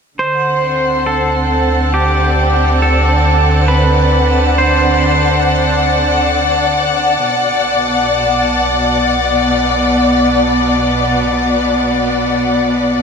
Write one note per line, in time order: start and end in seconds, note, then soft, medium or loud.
0.16 7.18 D2 medium
0.16 7.22 D3 medium
0.16 1.06 C5 medium
0.16 13.02 A5 medium
0.35 13.02 F#5 medium
0.47 7.22 C4 medium
1.06 1.97 A4 medium
1.94 2.84 G4 medium
2.08 13.02 D5 medium
2.82 3.68 A4 medium
3.68 4.58 B4 medium
4.58 6.30 C5 medium
7.22 13.02 B1 medium
7.22 13.02 B2 medium
7.66 13.02 B3 medium